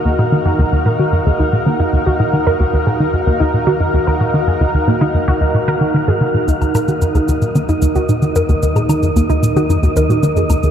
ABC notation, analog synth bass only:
X:1
M:4/4
L:1/16
Q:1/4=112
K:Ebm
V:1 name="Analog synth bass" clef=bass
E,, B,, E, G,, E,, E,, B,, E, G,, E,, E,, B,, E, G,, E,, E,, | B,, E, G,, E,, E,, B,, E, G,, E,, E,, B,, E, G,, E,, E,, B,, | E, G,, E,, E,, B,, E, G,, E,, E,, B,, E, E, E, A,, D, B,, | E,, E,, B,, E, G,, E,, E,, B,, E, G,, E,, E,, B,, E, G,, E,, |
E,, B,, E, G,, E,, E,, B,, E, G,, E,, E,, B,, E, G,, E,, E,, |]